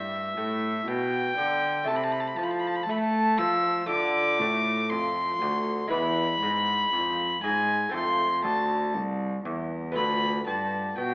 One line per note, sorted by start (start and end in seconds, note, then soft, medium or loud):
0.00 0.33 G2 medium
0.00 0.36 G2 medium
0.00 1.82 C4 medium
0.00 1.83 E4 medium
0.00 1.83 G4 medium
0.00 0.89 E5 loud
0.37 0.86 A2 medium
0.37 0.84 A2 medium
0.87 1.37 B2 medium
0.87 1.34 B2 medium
0.87 1.89 G5 loud
1.37 1.87 D3 medium
1.37 1.84 D3 medium
1.84 2.37 C3 medium
1.84 2.88 A3 medium
1.84 3.85 E4 medium
1.84 3.85 A4 medium
1.84 1.97 A5 medium
1.88 2.35 C3 medium
1.96 2.05 B5 medium
2.03 2.13 A5 medium
2.12 2.21 B5 medium
2.20 2.29 A5 medium
2.27 2.37 B5 medium
2.36 2.88 F3 medium
2.36 2.85 F3 medium
2.36 2.45 A5 medium
2.43 2.52 B5 medium
2.51 2.61 A5 medium
2.59 2.69 B5 medium
2.67 2.77 A5 medium
2.75 2.84 B5 medium
2.83 2.92 A5 loud
2.88 3.40 A3 medium
2.88 3.35 A3 medium
2.88 2.99 B5 loud
2.98 3.40 A5 loud
3.38 3.88 F3 medium
3.38 3.86 F3 medium
3.38 3.88 E6 loud
3.86 4.41 D3 medium
3.86 5.86 A3 medium
3.86 5.87 F4 medium
3.86 5.87 A4 medium
3.86 4.92 D6 loud
3.91 4.37 D3 medium
4.40 4.92 A2 medium
4.40 4.87 A2 medium
4.90 5.40 F2 medium
4.90 5.38 F2 medium
4.90 5.90 C6 loud
5.41 5.90 D2 medium
5.41 5.88 D2 medium
5.88 6.40 E2 medium
5.88 6.88 G#3 medium
5.88 7.88 E4 medium
5.88 7.89 B4 medium
5.88 7.40 B5 loud
5.92 6.38 E2 medium
6.41 6.91 G#2 medium
6.41 6.89 G#2 medium
6.92 7.42 F2 medium
6.92 7.40 F2 medium
7.43 7.92 G#2 medium
7.43 7.90 G#2 medium
7.43 7.93 G#5 loud
7.89 8.45 F2 medium
7.89 8.40 A3 medium
7.89 8.41 C4 medium
7.89 9.91 A4 medium
7.94 8.40 F2 medium
7.94 8.43 C6 loud
8.43 8.96 D2 medium
8.43 8.91 D2 medium
8.43 8.94 A5 loud
8.94 9.44 C2 medium
9.45 9.97 E2 medium
9.45 9.92 E2 medium
9.92 10.46 D2 medium
9.92 11.14 B3 medium
9.92 11.14 F4 medium
9.92 11.14 A4 medium
9.96 10.43 D2 medium
9.96 10.43 B5 loud
10.46 10.97 G2 medium
10.46 10.94 G2 medium
10.46 10.97 A5 loud
10.98 11.14 B2 medium
10.98 11.14 G5 loud